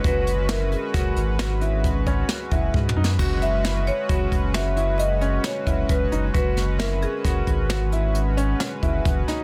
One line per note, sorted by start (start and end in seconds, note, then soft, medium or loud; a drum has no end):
0.04 0.76 F#1 medium
0.04 3.15 G#3 medium
0.04 3.16 C#4 medium
0.04 0.28 F#4 medium
0.04 3.16 F#4 medium
0.04 3.16 B4 medium
0.04 0.52 B4 medium
0.04 kick loud
0.04 closed hi-hat medium
0.27 closed hi-hat medium
0.49 0.73 E4 medium
0.49 0.73 A#4 medium
0.49 snare loud
0.49 closed hi-hat medium
0.72 1.58 G#4 medium
0.72 closed hi-hat medium
0.94 1.12 F#1 medium
0.94 1.18 F#4 medium
0.94 kick loud
0.94 snare soft
0.94 closed hi-hat medium
1.16 2.23 G#1 medium
1.16 closed hi-hat medium
1.39 1.51 F#4 medium
1.39 snare loud
1.39 closed hi-hat medium
1.61 1.85 E4 medium
1.61 closed hi-hat medium
1.84 kick loud
1.84 closed hi-hat medium
2.06 2.30 C#4 medium
2.06 kick medium
2.06 closed hi-hat medium
2.29 snare medium
2.29 closed hi-hat medium
2.51 2.69 F#1 medium
2.51 2.75 E4 medium
2.51 kick medium
2.51 closed hi-hat medium
2.74 2.95 G#2 medium
2.74 kick loud
2.89 mid tom medium
2.97 3.17 F#2 medium
2.97 3.08 D#4 medium
3.04 snare medium
3.19 3.90 F#1 loud
3.19 6.31 G#3 medium
3.19 6.31 C#4 medium
3.19 3.43 F#4 medium
3.19 6.31 F#4 medium
3.19 6.31 B4 medium
3.19 kick medium
3.19 closed hi-hat medium
3.19 crash medium
3.42 3.88 E5 medium
3.42 closed hi-hat medium
3.64 3.88 E4 medium
3.64 snare loud
3.64 closed hi-hat medium
3.87 4.57 C#5 loud
3.87 closed hi-hat soft
4.09 4.27 F#1 loud
4.09 4.33 F#4 medium
4.09 kick medium
4.09 closed hi-hat medium
4.32 5.39 F#1 medium
4.32 kick medium
4.32 closed hi-hat medium
4.54 4.66 F#4 medium
4.54 4.96 E5 loud
4.54 snare loud
4.54 closed hi-hat medium
4.77 5.00 E4 medium
4.77 closed hi-hat medium
4.98 5.45 D#5 medium
4.98 closed hi-hat medium
5.21 5.45 C#4 medium
5.21 closed hi-hat medium
5.44 5.91 C#5 medium
5.44 snare loud
5.44 closed hi-hat medium
5.66 5.85 F#1 medium
5.66 5.90 E4 medium
5.66 kick medium
5.66 closed hi-hat medium
5.89 6.07 F#1 medium
5.89 6.33 B4 medium
5.89 kick loud
5.89 closed hi-hat medium
6.12 6.30 F#1 medium
6.12 6.24 D#4 medium
6.12 closed hi-hat medium
6.34 7.06 F#1 loud
6.34 9.44 G#3 medium
6.34 9.44 C#4 medium
6.34 6.58 F#4 medium
6.34 9.44 F#4 medium
6.34 6.81 B4 medium
6.34 9.44 B4 medium
6.34 kick loud
6.34 closed hi-hat medium
6.57 snare soft
6.57 closed hi-hat medium
6.79 7.03 E4 medium
6.79 7.03 A#4 medium
6.79 snare loud
6.79 closed hi-hat medium
7.02 7.89 G#4 medium
7.02 closed hi-hat medium
7.25 7.43 F#1 medium
7.25 7.48 F#4 medium
7.25 kick loud
7.25 snare soft
7.25 closed hi-hat medium
7.47 8.55 G#1 medium
7.47 kick medium
7.47 closed hi-hat medium
7.69 7.81 F#4 medium
7.69 snare loud
7.69 closed hi-hat medium
7.92 8.16 E4 medium
7.92 closed hi-hat medium
8.15 closed hi-hat medium
8.37 8.61 C#4 medium
8.37 closed hi-hat medium
8.60 snare loud
8.60 closed hi-hat medium
8.82 9.01 F#1 medium
8.82 9.06 E4 medium
8.82 kick medium
8.82 closed hi-hat medium
9.05 9.23 F#1 medium
9.05 kick loud
9.05 closed hi-hat medium
9.28 9.40 D#4 medium
9.28 snare soft
9.28 closed hi-hat medium